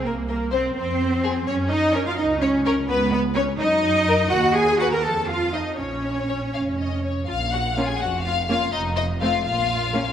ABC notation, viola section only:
X:1
M:6/8
L:1/16
Q:3/8=83
K:Bbm
V:1 name="Viola section"
B,2 B,2 C2 C6 | D2 E2 D F E2 D2 D2 | =B,2 B,2 ^C2 E6 | ^F2 A2 F B =A2 =F2 E2 |
D8- D2 z2 | z4 [B,D] z4 z [B,D] z | z4 [=A,C] z4 z [B,D] z |]